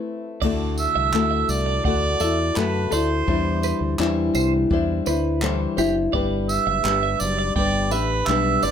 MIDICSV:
0, 0, Header, 1, 6, 480
1, 0, Start_track
1, 0, Tempo, 714286
1, 284, Time_signature, 4, 2, 24, 8
1, 5856, End_track
2, 0, Start_track
2, 0, Title_t, "Clean electric guitar"
2, 0, Program_c, 0, 27
2, 280, Note_on_c, 0, 74, 109
2, 510, Note_off_c, 0, 74, 0
2, 642, Note_on_c, 0, 76, 72
2, 757, Note_off_c, 0, 76, 0
2, 879, Note_on_c, 0, 76, 62
2, 996, Note_off_c, 0, 76, 0
2, 1118, Note_on_c, 0, 74, 66
2, 1235, Note_off_c, 0, 74, 0
2, 1245, Note_on_c, 0, 78, 80
2, 1473, Note_off_c, 0, 78, 0
2, 1484, Note_on_c, 0, 76, 82
2, 1599, Note_off_c, 0, 76, 0
2, 1966, Note_on_c, 0, 74, 72
2, 2080, Note_off_c, 0, 74, 0
2, 2447, Note_on_c, 0, 71, 66
2, 2560, Note_off_c, 0, 71, 0
2, 2924, Note_on_c, 0, 72, 67
2, 3039, Note_off_c, 0, 72, 0
2, 3408, Note_on_c, 0, 71, 77
2, 3646, Note_off_c, 0, 71, 0
2, 3646, Note_on_c, 0, 69, 84
2, 3760, Note_off_c, 0, 69, 0
2, 3887, Note_on_c, 0, 67, 80
2, 4000, Note_off_c, 0, 67, 0
2, 4121, Note_on_c, 0, 74, 110
2, 4351, Note_off_c, 0, 74, 0
2, 4481, Note_on_c, 0, 76, 73
2, 4597, Note_off_c, 0, 76, 0
2, 4724, Note_on_c, 0, 76, 63
2, 4838, Note_off_c, 0, 76, 0
2, 4963, Note_on_c, 0, 74, 72
2, 5076, Note_off_c, 0, 74, 0
2, 5079, Note_on_c, 0, 79, 81
2, 5309, Note_off_c, 0, 79, 0
2, 5322, Note_on_c, 0, 76, 80
2, 5437, Note_off_c, 0, 76, 0
2, 5801, Note_on_c, 0, 74, 81
2, 5856, Note_off_c, 0, 74, 0
2, 5856, End_track
3, 0, Start_track
3, 0, Title_t, "Harmonica"
3, 0, Program_c, 1, 22
3, 537, Note_on_c, 1, 76, 109
3, 1010, Note_on_c, 1, 74, 90
3, 1020, Note_off_c, 1, 76, 0
3, 1241, Note_off_c, 1, 74, 0
3, 1245, Note_on_c, 1, 74, 97
3, 1730, Note_on_c, 1, 71, 82
3, 1740, Note_off_c, 1, 74, 0
3, 1963, Note_off_c, 1, 71, 0
3, 1967, Note_on_c, 1, 72, 83
3, 2660, Note_off_c, 1, 72, 0
3, 4365, Note_on_c, 1, 76, 115
3, 4844, Note_on_c, 1, 74, 93
3, 4854, Note_off_c, 1, 76, 0
3, 5075, Note_off_c, 1, 74, 0
3, 5079, Note_on_c, 1, 74, 97
3, 5321, Note_on_c, 1, 71, 93
3, 5331, Note_off_c, 1, 74, 0
3, 5564, Note_on_c, 1, 76, 116
3, 5574, Note_off_c, 1, 71, 0
3, 5808, Note_on_c, 1, 74, 100
3, 5818, Note_off_c, 1, 76, 0
3, 5856, Note_off_c, 1, 74, 0
3, 5856, End_track
4, 0, Start_track
4, 0, Title_t, "Nylon-string guitar"
4, 0, Program_c, 2, 24
4, 0, Note_on_c, 2, 57, 54
4, 0, Note_on_c, 2, 60, 57
4, 0, Note_on_c, 2, 64, 58
4, 0, Note_on_c, 2, 71, 63
4, 285, Note_off_c, 2, 60, 0
4, 286, Note_on_c, 2, 50, 79
4, 289, Note_off_c, 2, 57, 0
4, 291, Note_on_c, 2, 57, 87
4, 292, Note_off_c, 2, 71, 0
4, 296, Note_off_c, 2, 64, 0
4, 296, Note_on_c, 2, 64, 78
4, 298, Note_on_c, 2, 66, 85
4, 301, Note_on_c, 2, 69, 85
4, 760, Note_off_c, 2, 57, 0
4, 761, Note_off_c, 2, 50, 0
4, 764, Note_on_c, 2, 50, 78
4, 765, Note_off_c, 2, 66, 0
4, 768, Note_on_c, 2, 57, 80
4, 769, Note_off_c, 2, 64, 0
4, 770, Note_off_c, 2, 69, 0
4, 771, Note_on_c, 2, 64, 77
4, 773, Note_on_c, 2, 66, 79
4, 778, Note_on_c, 2, 69, 81
4, 1230, Note_off_c, 2, 57, 0
4, 1238, Note_on_c, 2, 57, 63
4, 1246, Note_off_c, 2, 64, 0
4, 1247, Note_off_c, 2, 66, 0
4, 1248, Note_on_c, 2, 64, 66
4, 1252, Note_off_c, 2, 69, 0
4, 1255, Note_on_c, 2, 66, 71
4, 1261, Note_on_c, 2, 69, 73
4, 1268, Note_off_c, 2, 50, 0
4, 1471, Note_off_c, 2, 69, 0
4, 1479, Note_on_c, 2, 69, 57
4, 1482, Note_off_c, 2, 57, 0
4, 1482, Note_off_c, 2, 66, 0
4, 1487, Note_off_c, 2, 64, 0
4, 1490, Note_on_c, 2, 66, 44
4, 1500, Note_on_c, 2, 64, 47
4, 1718, Note_on_c, 2, 50, 75
4, 1720, Note_off_c, 2, 64, 0
4, 1720, Note_off_c, 2, 66, 0
4, 1720, Note_on_c, 2, 57, 68
4, 1722, Note_off_c, 2, 69, 0
4, 1728, Note_on_c, 2, 64, 79
4, 1728, Note_on_c, 2, 66, 84
4, 1730, Note_on_c, 2, 69, 79
4, 1944, Note_off_c, 2, 69, 0
4, 1952, Note_on_c, 2, 69, 56
4, 1956, Note_off_c, 2, 66, 0
4, 1962, Note_off_c, 2, 50, 0
4, 1963, Note_off_c, 2, 57, 0
4, 1964, Note_off_c, 2, 64, 0
4, 1964, Note_on_c, 2, 66, 53
4, 1972, Note_on_c, 2, 64, 50
4, 2196, Note_on_c, 2, 52, 71
4, 2199, Note_off_c, 2, 64, 0
4, 2199, Note_off_c, 2, 69, 0
4, 2201, Note_on_c, 2, 55, 77
4, 2204, Note_off_c, 2, 66, 0
4, 2205, Note_on_c, 2, 62, 81
4, 2207, Note_on_c, 2, 64, 70
4, 2212, Note_on_c, 2, 72, 84
4, 2667, Note_off_c, 2, 52, 0
4, 2675, Note_on_c, 2, 52, 80
4, 2679, Note_off_c, 2, 55, 0
4, 2680, Note_off_c, 2, 64, 0
4, 2681, Note_off_c, 2, 62, 0
4, 2682, Note_on_c, 2, 55, 88
4, 2683, Note_off_c, 2, 72, 0
4, 2683, Note_on_c, 2, 62, 86
4, 2688, Note_on_c, 2, 64, 99
4, 2691, Note_on_c, 2, 72, 85
4, 3157, Note_off_c, 2, 55, 0
4, 3160, Note_off_c, 2, 52, 0
4, 3160, Note_on_c, 2, 55, 70
4, 3165, Note_off_c, 2, 62, 0
4, 3167, Note_off_c, 2, 64, 0
4, 3168, Note_off_c, 2, 72, 0
4, 3168, Note_on_c, 2, 62, 80
4, 3175, Note_on_c, 2, 64, 85
4, 3181, Note_on_c, 2, 72, 89
4, 3395, Note_off_c, 2, 72, 0
4, 3403, Note_off_c, 2, 55, 0
4, 3403, Note_on_c, 2, 72, 62
4, 3404, Note_off_c, 2, 64, 0
4, 3407, Note_off_c, 2, 62, 0
4, 3412, Note_on_c, 2, 64, 57
4, 3424, Note_on_c, 2, 62, 51
4, 3636, Note_on_c, 2, 52, 83
4, 3639, Note_off_c, 2, 62, 0
4, 3640, Note_off_c, 2, 64, 0
4, 3642, Note_on_c, 2, 55, 84
4, 3644, Note_off_c, 2, 72, 0
4, 3647, Note_on_c, 2, 62, 84
4, 3648, Note_on_c, 2, 64, 95
4, 3653, Note_on_c, 2, 72, 99
4, 3869, Note_off_c, 2, 72, 0
4, 3877, Note_on_c, 2, 72, 65
4, 3880, Note_off_c, 2, 64, 0
4, 3881, Note_off_c, 2, 52, 0
4, 3884, Note_off_c, 2, 55, 0
4, 3886, Note_off_c, 2, 62, 0
4, 3888, Note_on_c, 2, 64, 67
4, 3897, Note_on_c, 2, 62, 49
4, 4115, Note_off_c, 2, 62, 0
4, 4115, Note_on_c, 2, 55, 76
4, 4121, Note_off_c, 2, 72, 0
4, 4123, Note_on_c, 2, 62, 85
4, 4126, Note_off_c, 2, 64, 0
4, 4129, Note_on_c, 2, 67, 90
4, 4132, Note_on_c, 2, 71, 97
4, 4590, Note_off_c, 2, 55, 0
4, 4598, Note_on_c, 2, 55, 73
4, 4599, Note_off_c, 2, 62, 0
4, 4602, Note_off_c, 2, 67, 0
4, 4607, Note_on_c, 2, 62, 75
4, 4610, Note_on_c, 2, 67, 82
4, 4613, Note_off_c, 2, 71, 0
4, 4616, Note_on_c, 2, 71, 81
4, 5070, Note_off_c, 2, 55, 0
4, 5078, Note_off_c, 2, 62, 0
4, 5078, Note_on_c, 2, 55, 69
4, 5085, Note_off_c, 2, 67, 0
4, 5086, Note_on_c, 2, 62, 73
4, 5093, Note_on_c, 2, 67, 70
4, 5094, Note_off_c, 2, 71, 0
4, 5097, Note_on_c, 2, 71, 75
4, 5310, Note_off_c, 2, 71, 0
4, 5318, Note_on_c, 2, 71, 52
4, 5321, Note_off_c, 2, 55, 0
4, 5322, Note_off_c, 2, 67, 0
4, 5325, Note_off_c, 2, 62, 0
4, 5330, Note_on_c, 2, 67, 47
4, 5338, Note_on_c, 2, 62, 48
4, 5561, Note_off_c, 2, 71, 0
4, 5562, Note_off_c, 2, 62, 0
4, 5567, Note_off_c, 2, 67, 0
4, 5568, Note_on_c, 2, 55, 84
4, 5570, Note_on_c, 2, 62, 88
4, 5578, Note_on_c, 2, 67, 86
4, 5582, Note_on_c, 2, 71, 92
4, 5790, Note_off_c, 2, 71, 0
4, 5798, Note_on_c, 2, 71, 55
4, 5801, Note_off_c, 2, 67, 0
4, 5806, Note_off_c, 2, 55, 0
4, 5807, Note_off_c, 2, 62, 0
4, 5809, Note_on_c, 2, 67, 54
4, 5816, Note_on_c, 2, 62, 49
4, 5856, Note_off_c, 2, 62, 0
4, 5856, Note_off_c, 2, 67, 0
4, 5856, Note_off_c, 2, 71, 0
4, 5856, End_track
5, 0, Start_track
5, 0, Title_t, "Fingered electric bass"
5, 0, Program_c, 3, 33
5, 282, Note_on_c, 3, 38, 100
5, 578, Note_off_c, 3, 38, 0
5, 642, Note_on_c, 3, 36, 80
5, 742, Note_off_c, 3, 36, 0
5, 759, Note_on_c, 3, 38, 92
5, 959, Note_off_c, 3, 38, 0
5, 999, Note_on_c, 3, 36, 91
5, 1198, Note_off_c, 3, 36, 0
5, 1241, Note_on_c, 3, 38, 91
5, 1440, Note_off_c, 3, 38, 0
5, 1481, Note_on_c, 3, 40, 84
5, 1680, Note_off_c, 3, 40, 0
5, 1725, Note_on_c, 3, 42, 94
5, 1922, Note_off_c, 3, 42, 0
5, 1961, Note_on_c, 3, 38, 83
5, 2160, Note_off_c, 3, 38, 0
5, 2204, Note_on_c, 3, 40, 98
5, 2500, Note_off_c, 3, 40, 0
5, 2559, Note_on_c, 3, 38, 83
5, 2660, Note_off_c, 3, 38, 0
5, 2682, Note_on_c, 3, 40, 87
5, 2880, Note_off_c, 3, 40, 0
5, 2920, Note_on_c, 3, 36, 98
5, 3119, Note_off_c, 3, 36, 0
5, 3163, Note_on_c, 3, 40, 100
5, 3361, Note_off_c, 3, 40, 0
5, 3407, Note_on_c, 3, 38, 85
5, 3800, Note_off_c, 3, 38, 0
5, 3881, Note_on_c, 3, 30, 94
5, 4080, Note_off_c, 3, 30, 0
5, 4123, Note_on_c, 3, 31, 99
5, 4419, Note_off_c, 3, 31, 0
5, 4478, Note_on_c, 3, 30, 94
5, 4579, Note_off_c, 3, 30, 0
5, 4598, Note_on_c, 3, 31, 94
5, 4798, Note_off_c, 3, 31, 0
5, 4843, Note_on_c, 3, 30, 100
5, 5041, Note_off_c, 3, 30, 0
5, 5079, Note_on_c, 3, 31, 96
5, 5322, Note_off_c, 3, 31, 0
5, 5322, Note_on_c, 3, 33, 83
5, 5520, Note_off_c, 3, 33, 0
5, 5558, Note_on_c, 3, 35, 93
5, 5757, Note_off_c, 3, 35, 0
5, 5799, Note_on_c, 3, 31, 81
5, 5856, Note_off_c, 3, 31, 0
5, 5856, End_track
6, 0, Start_track
6, 0, Title_t, "Drums"
6, 281, Note_on_c, 9, 36, 110
6, 281, Note_on_c, 9, 49, 86
6, 348, Note_off_c, 9, 49, 0
6, 349, Note_off_c, 9, 36, 0
6, 522, Note_on_c, 9, 54, 56
6, 589, Note_off_c, 9, 54, 0
6, 764, Note_on_c, 9, 39, 106
6, 831, Note_off_c, 9, 39, 0
6, 1000, Note_on_c, 9, 54, 66
6, 1068, Note_off_c, 9, 54, 0
6, 1242, Note_on_c, 9, 36, 106
6, 1309, Note_off_c, 9, 36, 0
6, 1478, Note_on_c, 9, 54, 66
6, 1545, Note_off_c, 9, 54, 0
6, 1721, Note_on_c, 9, 39, 98
6, 1789, Note_off_c, 9, 39, 0
6, 1960, Note_on_c, 9, 54, 61
6, 2028, Note_off_c, 9, 54, 0
6, 2204, Note_on_c, 9, 36, 104
6, 2271, Note_off_c, 9, 36, 0
6, 2441, Note_on_c, 9, 54, 57
6, 2508, Note_off_c, 9, 54, 0
6, 2683, Note_on_c, 9, 39, 105
6, 2751, Note_off_c, 9, 39, 0
6, 2921, Note_on_c, 9, 54, 68
6, 2988, Note_off_c, 9, 54, 0
6, 3164, Note_on_c, 9, 36, 105
6, 3231, Note_off_c, 9, 36, 0
6, 3401, Note_on_c, 9, 54, 60
6, 3468, Note_off_c, 9, 54, 0
6, 3644, Note_on_c, 9, 39, 104
6, 3711, Note_off_c, 9, 39, 0
6, 3885, Note_on_c, 9, 54, 59
6, 3952, Note_off_c, 9, 54, 0
6, 4124, Note_on_c, 9, 36, 96
6, 4191, Note_off_c, 9, 36, 0
6, 4363, Note_on_c, 9, 54, 62
6, 4430, Note_off_c, 9, 54, 0
6, 4602, Note_on_c, 9, 39, 106
6, 4669, Note_off_c, 9, 39, 0
6, 4837, Note_on_c, 9, 54, 70
6, 4904, Note_off_c, 9, 54, 0
6, 5080, Note_on_c, 9, 36, 100
6, 5147, Note_off_c, 9, 36, 0
6, 5317, Note_on_c, 9, 54, 57
6, 5384, Note_off_c, 9, 54, 0
6, 5559, Note_on_c, 9, 39, 99
6, 5626, Note_off_c, 9, 39, 0
6, 5797, Note_on_c, 9, 54, 58
6, 5856, Note_off_c, 9, 54, 0
6, 5856, End_track
0, 0, End_of_file